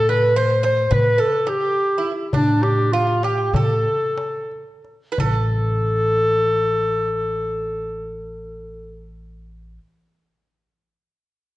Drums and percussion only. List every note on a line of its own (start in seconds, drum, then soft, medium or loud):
0.09 darbuka tek medium
0.64 darbuka tek medium
0.78 darbuka ka soft
0.91 darbuka dum medium
1.47 darbuka tek medium
1.75 darbuka ka soft
2.04 darbuka ka soft
2.33 darbuka dum medium
2.63 darbuka tek medium
3.23 darbuka tek medium
3.39 darbuka ka soft
3.54 darbuka dum medium
3.87 darbuka ka soft
4.18 darbuka tek medium
4.51 darbuka ka soft
4.85 darbuka ka soft
5.18 darbuka dum medium